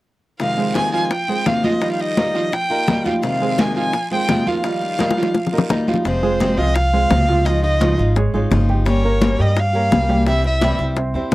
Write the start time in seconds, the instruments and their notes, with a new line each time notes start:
0.39 steel-string acoustic guitar F2 C3 D#3 G#3 C4 F4, violin F5, high bongo, high conga, long guiro
0.58 grand piano G#3 G#4 C5, high conga
0.75 steel-string acoustic guitar F2 C3 D#3 G#3 C4 F4, violin G#5, high bongo, high conga, short guiro
0.93 grand piano F3 F4 F5, violin G#5, high conga, short guiro
1.04 violin G#5
1.11 violin G5, muted steel-string acoustic guitar stroke, high bongo, high conga, long guiro
1.28 steel-string acoustic guitar D#3 G#3 C4 F4, grand piano G#3 G#4 C5, high conga
1.45 steel-string acoustic guitar F2 C3 D#3 G#3 C4 F4, violin F5, high bongo, low bongo, high conga, short guiro
1.63 steel-string acoustic guitar D#3 G#3 C4 F4, grand piano F3 F4 F5, violin D#5, high conga, short guiro
1.81 steel-string acoustic guitar D#3 G3 D#4 F4, grand piano F3 F4 F5, high bongo, high conga, long guiro
1.92 violin F5
1.99 violin D#5, high bongo, high conga
2.17 steel-string acoustic guitar D#3 G3 D#4 F4, grand piano A#3 A#4 D#5, high bongo, high conga, short guiro
2.35 grand piano F3 F4 F5, high bongo, high conga, short guiro
2.52 violin G5, muted steel-string acoustic guitar stroke, high bongo, high conga, long guiro
2.70 steel-string acoustic guitar G3 D#4 F4, grand piano A#3 A#4 D#5, high conga
2.87 steel-string acoustic guitar D#3 G3 D#4 F4, grand piano A#3 A#4 D#5, high bongo, low bongo, high conga, short guiro
3.04 grand piano F3 F4 F5, steel-string acoustic guitar G3 D#4 F4, high bongo, high conga, short guiro
3.22 steel-string acoustic guitar F2 C3 D#3 G#3 C4 F4, violin F5, high bongo, high conga, long guiro
3.41 grand piano G#3 G#4 C5, high conga
3.58 steel-string acoustic guitar F2 C3 D#3 G#3 C4 F4, violin G#5, high bongo, high conga, short guiro
3.76 grand piano F3 F4 F5, violin G#5, high conga, short guiro
3.93 muted steel-string acoustic guitar stroke, high bongo, high conga, long guiro
4.11 steel-string acoustic guitar D#3 G#3 C4 F4, grand piano G#3 G#4 C5, violin G5, high conga
4.28 steel-string acoustic guitar F2 C3 D#3 G#3 C4 F4, high bongo, low bongo, high conga, short guiro
4.46 steel-string acoustic guitar D#3 G#3 C4 F4, grand piano F3 F4 F5, violin F5, high conga, short guiro
4.63 steel-string acoustic guitar D#3 G3 D#4 F4, grand piano F3 F4 F5, high bongo, high conga, long guiro
4.81 high bongo, high conga
4.99 steel-string acoustic guitar D#3 G3 D#4 F4, grand piano A#3 A#4 D#5, high bongo, high conga, short guiro
5.11 high bongo
5.17 grand piano F3 F4 F5, high conga, short guiro
5.23 high bongo
5.34 muted steel-string acoustic guitar stroke, high bongo, high conga, long guiro
5.47 low bongo
5.52 steel-string acoustic guitar G3 D#4 F4, grand piano A#3 A#4 D#5, high conga
5.58 low bongo
5.69 steel-string acoustic guitar D#3 G3 D#4 F4, grand piano A#3 A#4 D#5, low bongo, high conga, short guiro
5.87 grand piano F3 F4 F5, steel-string acoustic guitar G3 D#4 F4, high conga, short guiro
5.94 low bongo
6.05 upright bass F1, steel-string acoustic guitar C3 F3 G#3 C4 F4, violin C5, high bongo, high conga
6.23 grand piano G#3 G#4 C5, steel-string acoustic guitar G#3 C4 F4, high conga
6.40 steel-string acoustic guitar C3 F3 G#3 C4 F4, high bongo, high conga
6.57 upright bass C2, grand piano F3 F4 F5, steel-string acoustic guitar G#3 C4 F4, violin D#5, high conga
6.75 violin F5, muted steel-string acoustic guitar stroke, high bongo, high conga
6.93 grand piano G#3 G#4 C5, steel-string acoustic guitar G#3 C4 F4, high conga
7.10 upright bass C#2, steel-string acoustic guitar C3 F3 G#3 C4 F4, high bongo, low bongo, high conga
7.28 grand piano F3 F4 F5, high conga
7.45 steel-string acoustic guitar C#3 F3 G#3 D#4 F4, grand piano F3 F4 F5, violin D#5, high bongo, high conga
7.62 steel-string acoustic guitar G#3 D#4 F4, violin D#5, high bongo, high conga
7.80 steel-string acoustic guitar C#3 F3 G#3 D#4 F4, grand piano F3 F4 F5, high bongo, high conga
7.98 upright bass G#1, steel-string acoustic guitar G#3 D#4 F4, high bongo, high conga
8.16 grand piano G#3 G#4 C#5, muted steel-string acoustic guitar stroke, high bongo, high conga
8.34 upright bass G#1, grand piano G#3 G#4 C#5, steel-string acoustic guitar G#3 D#4 F4, high conga
8.51 upright bass G1, steel-string acoustic guitar C#3 F3 G#3 D#4 F4, high bongo, low bongo, high conga
8.69 grand piano G4 G5, high bongo
8.85 steel-string acoustic guitar G3 A#3 C#4 G4, violin C#5, high bongo, high conga
9.03 grand piano A#3 A#4 C#5, steel-string acoustic guitar A#3 C#4 G4, high conga
9.21 steel-string acoustic guitar G3 A#3 C#4 G4, high bongo, high conga
9.38 upright bass G2, grand piano G3 G4 G5, steel-string acoustic guitar A#3 C#4 G4, violin D#5, high conga
9.57 violin F5, muted steel-string acoustic guitar stroke, high bongo, high conga
9.73 grand piano A#3 A#4 C#5, steel-string acoustic guitar A#3 C#4 G4, high conga
9.91 upright bass C2, steel-string acoustic guitar G3 A#3 C#4 G4, high bongo, low bongo, high conga
10.09 grand piano G3 G4 G5, high conga
10.27 steel-string acoustic guitar C3 E3 G3 C4 E4, grand piano G3 G4 G5, violin E5, high bongo, high conga
10.44 steel-string acoustic guitar G3 C4 E4, violin E5, high bongo, high conga
10.61 steel-string acoustic guitar C3 E3 G3 C4 E4, grand piano G3 G4 G5, high bongo, high conga
10.79 upright bass C2, steel-string acoustic guitar G3 C4 E4, high bongo, high conga
10.96 grand piano C4 C5 E5, muted steel-string acoustic guitar stroke, high bongo, high conga
11.14 upright bass E2, steel-string acoustic guitar G3 C4 E4, grand piano C4 C5 E5, high conga
11.31 upright bass F2, steel-string acoustic guitar C3 E3